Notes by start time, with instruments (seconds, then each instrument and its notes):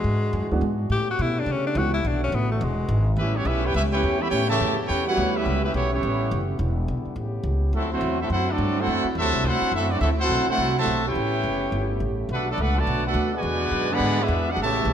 Already playing: trombone section E3 G#3 D4 F#4, tenor saxophone G#3
0.04 upright bass G#2
0.33 upright bass F#2
0.42 upright bass E2
0.51 upright bass D2, grand piano E3 G#3 B3 D4 F#4
0.61 upright bass G#2
0.90 upright bass A2, trombone section C#3 A3 B3 G4, tenor saxophone G4
1.11 tenor saxophone F#4
1.19 upright bass B2, tenor saxophone E4
1.40 tenor saxophone D4
1.46 upright bass C#3
1.52 tenor saxophone C#4
1.67 tenor saxophone D4
1.75 upright bass C#2, grand piano E3 A3 B3 C#4 G4, tenor saxophone F#4
1.94 tenor saxophone E4
2.04 upright bass B1, trombone section D3 F#4, tenor saxophone D4
2.24 tenor saxophone C#4
2.32 upright bass A1, tenor saxophone B3
2.52 tenor saxophone A3
2.61 upright bass E1, trombone section E3 G#3 D4, tenor saxophone G#3
2.88 upright bass G#1
3.17 upright bass A1, trombone section C#3 G3 A3 B3 C#4 E4 G4, trumpet section C#4 G4 B4 E5
3.36 trombone section E3 G3 C#4, trumpet section B3 E4 G4 C#5
3.45 upright bass B1, trombone section G3 C#4 E4, trumpet section C#4 G4 B4 E5
3.65 trombone section C#4 E4 G4, trumpet section E4 B4 C#5 G5
3.74 upright bass C#2, trombone section G3 C#4 E4, trumpet section C#4 G4 B4 E5
3.92 trombone section C#4 E4 G4, trumpet section E4 B4 C#5 G5
4.03 upright bass E2
4.20 trombone section E3 G3 B3, trumpet section G4 C#5 E5 B5
4.31 upright bass A2, trombone section C#4 E4 G4, trumpet section E4 B4 C#5 G5
4.48 trombone section C#3 E3 A3, trumpet section G4 C#5 E5 A5
4.60 upright bass F2
4.87 upright bass E2, trombone section C#4 E4 G4, trumpet section E4 B4 C#5 G5
5.06 trombone section G3 C#4 F#4, trumpet section E4 B4 C#5 F#5
5.17 upright bass D2
5.33 trombone section G3 C#4 E4, trumpet section C#4 G4 B4 E5
5.46 upright bass C#2
5.63 trombone section G3 C#4 E4, trumpet section C#4 G4 B4 E5
5.73 upright bass B1, trombone section E3 G3 C#4, trumpet section B3 E4 G4 C#5
5.90 trombone section E3 G3 C#4, trumpet section B3 E4 G4 C#5
6.03 upright bass A1
6.31 upright bass F#1
6.58 upright bass E1, trombone section D3 G3 E4
6.88 upright bass B1
7.05 muted upright bass stroke
7.16 upright bass A1, trombone section C#3 A3 G4
7.43 upright bass C#2
7.73 upright bass D2, trombone section D3 F#3 A3 C4 E4, trumpet section C4 F#4 A4 E5
7.92 trombone section F#3 A3 C4, trumpet section A3 E4 F#4 C5
8.01 upright bass E2
8.21 trombone section A3 C4 E4, trumpet section C4 F#4 A4 E5
8.30 upright bass F#2, trombone section A3 C4 F#4, trumpet section E4 A4 C5 F#5
8.50 trombone section F#3 A3 D4, trumpet section C4 F#4 A4 D5
8.58 upright bass G2
8.79 trombone section A3 C4 F#4, trumpet section E4 A4 C5 F#5
8.87 upright bass F#2
9.04 muted upright bass stroke
9.15 upright bass E2, trumpet section F#4 C5 E5 A5
9.19 trombone section C3 F#3 A3
9.24 upright bass D2
9.34 upright bass C2
9.44 upright bass D2, trombone section A3 C4 F#4, trumpet section E4 A4 C5 F#5
9.61 muted upright bass stroke
9.72 upright bass F#2, trombone section A3 C4 E4, trumpet section F#4 E5
9.76 trumpet section C4 A4
9.91 trombone section F#3 A3 D4, trumpet section C4 F#4 A4 D5
10.01 upright bass D2, trombone section A3 C4 E4, trumpet section C4 F#4 A4 E5
10.20 trombone section A3 C4 F#4, trumpet section E4 A4 C5 F#5
10.29 upright bass B1
10.47 trombone section A3 C4 F#4, trumpet section E4 A4 C5 F#5, muted upright bass stroke
10.57 upright bass C2
10.78 trombone section C3 F#3 A3, trumpet section F#4 C5 E5 A5
10.86 upright bass B1
11.07 trombone section C#4 E4 G4, trumpet section E4 B4 C#5 G5
11.15 upright bass A1, trombone section C#3 A3 B3 G4
11.44 upright bass F#1
11.72 upright bass G1
12.00 upright bass A1
12.29 upright bass B1, trombone section D3 A3 B3 D4 F#4, trumpet section D4 B4 F#5
12.33 trumpet section A4
12.49 trombone section F#3 A3 D4, trumpet section B3 F#4 A4 D5
12.58 upright bass C#2, trombone section A3 D4 F#4
12.62 trumpet section D4 A4 B4 F#5
12.77 trombone section D3 F#3 A3, trumpet section F#4 B4 D5 A5
12.87 upright bass B1
13.06 trombone section A3 D4 F#4, trumpet section D4 A4 B4 F#5
13.14 upright bass D2
13.35 trombone section B2 D3 G#3, trumpet section F#4 B4 D5 G#5
13.43 upright bass E2, trombone section E3 G#3 D4
13.71 upright bass F#2
13.91 trombone section D3 G#3 B3, trumpet section G#4 D5 F#5 B5
14.00 upright bass G#2
14.20 trombone section G#3 B3 E4, trumpet section D4 G#4 B4 E5
14.28 upright bass E2
14.50 trombone section B3 D4 F#4, trumpet section D4 G#4 B4 F#5
14.57 upright bass A1, trombone section C#3 A3 B3 G4
14.61 trombone section E3, trumpet section G4 C#5 E5 A5
14.85 upright bass B1